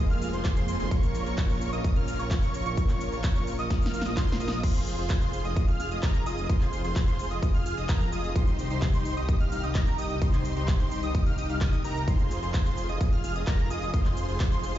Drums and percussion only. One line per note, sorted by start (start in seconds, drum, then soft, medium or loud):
0.10 open hi-hat medium
0.22 open hi-hat loud
0.22 shaker medium
0.33 closed hi-hat soft
0.33 shaker soft
0.45 kick loud
0.45 clap loud
0.45 closed hi-hat medium
0.45 ride medium
0.45 shaker soft
0.56 closed hi-hat soft
0.56 shaker soft
0.68 open hi-hat loud
0.68 shaker medium
0.80 closed hi-hat soft
0.80 shaker soft
0.91 kick loud
0.91 closed hi-hat loud
0.91 ride medium
0.91 shaker soft
1.03 closed hi-hat soft
1.03 shaker soft
1.15 open hi-hat loud
1.15 shaker medium
1.26 closed hi-hat soft
1.26 shaker soft
1.38 kick loud
1.38 clap loud
1.38 closed hi-hat loud
1.38 ride medium
1.38 shaker soft
1.50 open hi-hat medium
1.50 shaker soft
1.61 open hi-hat loud
1.61 shaker medium
1.73 closed hi-hat soft
1.73 shaker soft
1.84 kick loud
1.84 closed hi-hat loud
1.84 ride medium
1.84 shaker soft
1.96 closed hi-hat soft
2.08 open hi-hat loud
2.08 shaker medium
2.19 closed hi-hat soft
2.19 shaker soft
2.31 kick loud
2.31 clap loud
2.31 closed hi-hat loud
2.31 ride medium
2.31 shaker soft
2.43 closed hi-hat soft
2.43 shaker soft
2.54 open hi-hat loud
2.54 shaker medium
2.66 closed hi-hat soft
2.66 shaker soft
2.77 kick loud
2.77 closed hi-hat loud
2.77 ride medium
2.77 shaker soft
2.89 clap soft
2.89 closed hi-hat soft
2.89 shaker soft
3.01 open hi-hat loud
3.01 shaker medium
3.12 closed hi-hat soft
3.12 shaker soft
3.24 kick loud
3.24 clap loud
3.24 closed hi-hat loud
3.24 ride medium
3.24 shaker soft
3.36 open hi-hat medium
3.36 shaker soft
3.47 open hi-hat loud
3.47 shaker medium
3.59 closed hi-hat soft
3.59 shaker soft
3.70 kick loud
3.70 snare medium
3.70 closed hi-hat loud
3.70 ride medium
3.70 shaker soft
3.82 snare medium
3.82 open hi-hat medium
3.82 shaker soft
3.94 open hi-hat loud
3.94 shaker medium
4.01 snare medium
4.01 closed hi-hat soft
4.06 shaker soft
4.17 kick loud
4.17 snare medium
4.17 clap loud
4.17 closed hi-hat loud
4.17 ride medium
4.17 shaker soft
4.29 snare loud
4.29 closed hi-hat soft
4.29 shaker soft
4.40 open hi-hat loud
4.40 shaker medium
4.48 snare loud
4.48 closed hi-hat soft
4.52 shaker soft
4.63 kick loud
4.63 closed hi-hat loud
4.63 crash loud
4.63 ride medium
4.63 shaker soft
4.75 closed hi-hat soft
4.75 shaker soft
4.87 open hi-hat loud
4.87 shaker medium
4.98 closed hi-hat soft
4.98 shaker soft
5.10 kick loud
5.10 clap loud
5.10 closed hi-hat loud
5.10 ride medium
5.10 shaker soft
5.22 open hi-hat medium
5.22 shaker soft
5.33 open hi-hat loud
5.33 shaker medium
5.45 closed hi-hat soft
5.45 shaker soft
5.56 kick loud
5.56 closed hi-hat medium
5.56 ride medium
5.56 shaker soft
5.68 closed hi-hat soft
5.80 open hi-hat loud
5.80 shaker medium
5.91 closed hi-hat soft
5.91 shaker soft
6.03 kick loud
6.03 clap loud
6.03 closed hi-hat loud
6.03 ride medium
6.03 shaker soft
6.15 closed hi-hat soft
6.15 shaker soft
6.26 open hi-hat loud
6.26 shaker medium
6.38 closed hi-hat soft
6.38 shaker soft
6.49 kick loud
6.49 closed hi-hat loud
6.49 ride medium
6.49 shaker soft
6.61 clap soft
6.61 closed hi-hat soft
6.61 shaker soft
6.73 open hi-hat loud
6.73 shaker medium
6.84 closed hi-hat soft
6.84 shaker soft
6.96 kick loud
6.96 clap loud
6.96 closed hi-hat medium
6.96 ride medium
6.96 shaker soft
7.08 closed hi-hat soft
7.08 shaker soft
7.19 open hi-hat loud
7.19 shaker medium
7.31 closed hi-hat soft
7.31 shaker soft
7.43 kick loud
7.43 closed hi-hat medium
7.43 ride medium
7.43 shaker soft
7.54 open hi-hat medium
7.66 open hi-hat loud
7.66 shaker medium
7.77 closed hi-hat soft
7.77 shaker soft
7.89 kick loud
7.89 clap loud
7.89 closed hi-hat loud
7.89 ride medium
7.89 shaker soft
8.01 closed hi-hat soft
8.01 shaker soft
8.12 open hi-hat loud
8.12 shaker medium
8.24 closed hi-hat soft
8.24 shaker soft
8.36 kick loud
8.36 closed hi-hat medium
8.36 ride medium
8.36 shaker soft
8.47 closed hi-hat soft
8.47 shaker soft
8.59 open hi-hat loud
8.59 shaker medium
8.70 closed hi-hat soft
8.70 shaker soft
8.82 kick loud
8.82 clap loud
8.82 closed hi-hat medium
8.82 ride medium
8.82 shaker soft
8.94 open hi-hat medium
8.94 shaker soft
9.05 open hi-hat loud
9.05 shaker medium
9.17 closed hi-hat soft
9.17 shaker soft
9.29 kick loud
9.29 closed hi-hat medium
9.29 ride medium
9.29 shaker soft
9.40 closed hi-hat soft
9.52 open hi-hat loud
9.52 shaker medium
9.63 closed hi-hat soft
9.63 shaker soft
9.75 kick loud
9.75 clap loud
9.75 closed hi-hat medium
9.75 ride medium
9.75 shaker soft
9.87 closed hi-hat soft
9.87 shaker soft
9.98 open hi-hat loud
9.98 shaker medium
10.10 closed hi-hat soft
10.10 shaker soft
10.22 kick loud
10.22 closed hi-hat medium
10.22 ride medium
10.22 shaker soft
10.33 clap soft
10.33 closed hi-hat soft
10.33 shaker soft
10.45 open hi-hat loud
10.45 shaker medium
10.56 closed hi-hat soft
10.56 shaker soft
10.68 kick loud
10.68 clap loud
10.68 closed hi-hat medium
10.68 ride medium
10.68 shaker soft
10.80 closed hi-hat soft
10.80 shaker soft
10.91 open hi-hat loud
10.91 shaker medium
11.03 closed hi-hat soft
11.03 shaker soft
11.15 kick loud
11.15 closed hi-hat medium
11.15 ride medium
11.15 shaker soft
11.26 open hi-hat medium
11.38 open hi-hat loud
11.38 shaker medium
11.50 closed hi-hat soft
11.50 shaker soft
11.61 kick loud
11.61 clap loud
11.61 closed hi-hat medium
11.61 ride medium
11.61 shaker soft
11.73 closed hi-hat soft
11.73 shaker soft
11.84 open hi-hat loud
11.84 shaker medium
11.96 closed hi-hat soft
11.96 shaker soft
12.08 kick loud
12.08 closed hi-hat medium
12.08 ride medium
12.08 shaker soft
12.19 closed hi-hat soft
12.19 shaker soft
12.31 open hi-hat loud
12.31 shaker medium
12.43 closed hi-hat soft
12.43 shaker soft
12.54 kick loud
12.54 clap loud
12.54 closed hi-hat medium
12.54 ride medium
12.54 shaker soft
12.66 open hi-hat medium
12.66 shaker soft
12.77 open hi-hat loud
12.77 shaker medium
12.89 closed hi-hat soft
12.89 shaker soft
13.01 kick loud
13.01 closed hi-hat medium
13.01 ride medium
13.01 shaker soft
13.12 closed hi-hat soft
13.24 open hi-hat loud
13.24 shaker medium
13.36 closed hi-hat soft
13.36 shaker soft
13.47 kick loud
13.47 clap loud
13.47 closed hi-hat medium
13.47 ride medium
13.47 shaker soft
13.59 closed hi-hat soft
13.59 shaker soft
13.70 open hi-hat loud
13.70 shaker medium
13.82 closed hi-hat soft
13.82 shaker soft
13.94 kick loud
13.94 closed hi-hat medium
13.94 ride medium
13.94 shaker soft
14.05 clap soft
14.05 closed hi-hat soft
14.05 shaker soft
14.17 open hi-hat loud
14.17 shaker medium
14.29 closed hi-hat soft
14.29 shaker soft
14.40 kick loud
14.40 clap loud
14.40 closed hi-hat medium
14.40 ride medium
14.40 shaker soft
14.52 closed hi-hat soft
14.52 shaker soft
14.63 open hi-hat loud
14.63 shaker medium
14.75 closed hi-hat soft